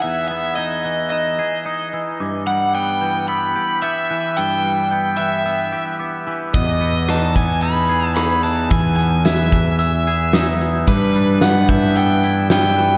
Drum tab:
HH |--------|--------|--------|xxxxxxxx|
SD |--------|--------|--------|--r---r-|
BD |--------|--------|--------|o--o----|

HH |xxxxxxxx|xxxxxxxx|
SD |--o---o-|--o---o-|
BD |o--o----|o--o----|